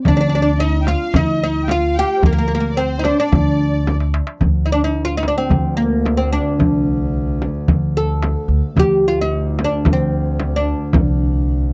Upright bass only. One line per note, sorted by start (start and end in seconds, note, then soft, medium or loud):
0.06 0.93 D2 medium
1.14 2.01 D2 medium
2.22 3.10 D2 medium
3.32 4.19 D2 loud
4.42 5.29 D2 medium
5.49 6.37 D2 medium
6.59 7.46 C2 medium
7.69 8.34 D2 medium
8.48 8.60 D2 medium
8.76 9.63 D2 medium
9.85 10.72 D2 medium
10.94 11.73 C2 medium